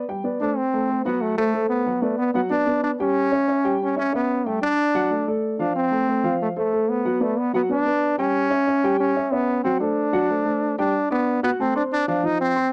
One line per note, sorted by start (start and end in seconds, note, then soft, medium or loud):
0.08 0.21 G3 medium
0.08 0.22 G4 medium
0.08 0.22 G5 medium
0.24 0.37 B3 medium
0.24 0.38 B4 medium
0.24 0.38 D5 medium
0.41 0.54 A3 medium
0.41 0.58 D4 loud
0.41 0.54 A4 medium
0.41 0.54 C5 medium
0.57 1.05 C4 loud
0.73 0.86 A3 medium
0.73 0.87 A4 medium
0.73 0.87 C5 medium
0.89 1.02 A3 medium
0.89 1.03 A4 medium
0.89 1.03 C5 medium
1.05 1.32 F#3 medium
1.05 1.23 B3 loud
1.05 1.32 F#4 loud
1.05 1.32 F#5 medium
1.21 1.37 A3 loud
1.38 1.68 A3 loud
1.38 1.51 A3 medium
1.38 1.51 A4 medium
1.38 1.51 C5 medium
1.54 1.80 A3 medium
1.54 1.81 A4 medium
1.54 1.81 C5 medium
1.69 2.03 B3 loud
1.86 2.00 F#3 medium
1.86 2.00 F#4 medium
1.86 2.00 F#5 medium
2.02 2.17 A3 medium
2.02 2.29 B3 medium
2.02 2.29 B4 medium
2.02 2.29 D5 medium
2.18 2.33 B3 loud
2.34 2.48 F#3 loud
2.34 2.41 B3 loud
2.34 2.48 F#4 medium
2.34 2.49 F#5 medium
2.50 2.64 B3 medium
2.50 2.81 D4 loud
2.50 2.64 B4 medium
2.50 2.64 D5 medium
2.67 2.94 B3 medium
2.67 2.94 B4 medium
2.67 2.94 D5 medium
2.83 2.91 D4 loud
3.00 3.26 G3 medium
3.00 3.77 C#4 loud
3.00 3.27 G4 medium
3.00 3.27 G5 medium
3.32 3.45 C#4 medium
3.32 3.45 C#5 medium
3.32 3.46 E5 medium
3.48 3.62 C#4 medium
3.48 3.62 C#5 medium
3.48 3.62 E5 medium
3.64 3.91 G3 medium
3.64 3.91 G4 loud
3.64 3.91 G5 medium
3.83 3.97 C#4 loud
3.96 4.10 C#4 medium
3.96 4.13 C#4 loud
3.96 4.10 C#5 medium
3.96 4.10 E5 medium
4.13 4.48 B3 medium
4.13 4.40 C#4 medium
4.13 4.40 C#5 medium
4.13 4.40 E5 medium
4.46 4.59 G3 medium
4.46 4.62 A3 medium
4.46 4.59 G4 medium
4.46 4.60 G5 medium
4.61 4.88 D4 medium
4.61 5.29 D4 loud
4.61 4.88 D5 medium
4.95 5.08 F#3 loud
4.95 5.08 F#4 loud
4.95 5.08 F#5 loud
5.11 5.24 A3 medium
5.11 5.24 A4 medium
5.11 5.24 D5 medium
5.28 5.54 A3 medium
5.28 5.54 A4 medium
5.28 5.54 D5 medium
5.58 5.86 F3 medium
5.58 5.74 D4 medium
5.58 5.86 F4 medium
5.58 5.86 F5 medium
5.76 6.36 C4 loud
5.91 6.05 A3 medium
5.91 6.05 A4 medium
5.91 6.05 C5 medium
6.08 6.21 A3 medium
6.08 6.21 A4 medium
6.08 6.22 C5 medium
6.23 6.50 F3 loud
6.23 6.50 F4 loud
6.23 6.51 F5 medium
6.42 6.49 A3 medium
6.56 6.70 A3 medium
6.56 6.91 A3 medium
6.56 6.70 A4 medium
6.56 6.70 C5 medium
6.73 6.99 A3 medium
6.73 7.00 A4 medium
6.73 7.00 C5 medium
6.89 7.24 B3 medium
7.05 7.18 F#3 medium
7.05 7.19 F#4 medium
7.05 7.19 F#5 medium
7.20 7.40 A3 medium
7.20 7.47 B3 medium
7.20 7.47 B4 medium
7.20 7.48 D5 medium
7.39 7.54 B3 medium
7.53 7.67 F#3 loud
7.53 7.62 B3 medium
7.53 7.67 F#4 medium
7.53 7.67 F#5 loud
7.69 7.83 B3 medium
7.69 8.16 D4 loud
7.69 7.83 B4 medium
7.69 7.83 D5 medium
7.86 8.12 B3 medium
7.86 8.12 B4 medium
7.86 8.13 D5 medium
8.18 8.45 G3 medium
8.18 8.96 C#4 loud
8.18 8.45 G4 medium
8.18 8.45 G5 medium
8.50 8.64 C#4 medium
8.50 8.64 C#5 medium
8.50 8.64 E5 medium
8.67 8.80 C#4 medium
8.67 8.80 C#5 medium
8.67 8.81 E5 medium
8.84 9.10 G3 loud
8.84 9.10 G4 loud
8.84 9.10 G5 loud
9.00 9.34 C#4 loud
9.16 9.29 C#4 medium
9.16 9.29 C#5 medium
9.16 9.29 E5 medium
9.32 9.63 B3 medium
9.32 9.58 C#4 medium
9.32 9.58 C#5 medium
9.32 9.59 E5 medium
9.64 9.77 F#3 medium
9.64 9.79 C4 medium
9.64 9.78 F#4 medium
9.64 9.78 F#5 medium
9.80 10.07 A3 medium
9.80 10.73 D4 medium
9.80 10.07 A4 medium
9.80 10.07 C5 medium
10.13 10.26 F#3 loud
10.13 10.26 F#4 loud
10.13 10.26 F#5 loud
10.30 10.42 A3 medium
10.30 10.43 A4 medium
10.30 10.43 C5 medium
10.45 10.72 A3 medium
10.45 10.72 A4 medium
10.45 10.72 C5 medium
10.78 10.91 G3 loud
10.78 11.08 D4 loud
10.78 10.91 G4 medium
10.78 10.91 G5 medium
11.10 11.41 B3 loud
11.10 11.37 D4 medium
11.10 11.37 D5 medium
11.10 11.37 D6 medium
11.43 11.51 B3 loud
11.43 11.56 F#4 medium
11.43 11.56 F#5 medium
11.43 11.56 F#6 medium
11.59 11.72 A3 medium
11.59 11.74 C4 loud
11.59 11.72 A4 medium
11.59 11.72 A5 medium
11.75 12.01 C4 medium
11.75 11.83 D4 medium
11.75 12.01 C5 medium
11.75 12.02 C6 medium
11.92 12.07 D4 loud
12.08 12.21 F3 loud
12.08 12.26 D4 loud
12.08 12.21 F4 medium
12.08 12.21 F5 medium
12.23 12.50 F3 medium
12.23 12.40 D#4 loud
12.23 12.50 F4 medium
12.23 12.50 F5 medium
12.41 12.70 C4 loud
12.56 12.69 C4 medium
12.56 12.69 C5 medium
12.56 12.69 C6 medium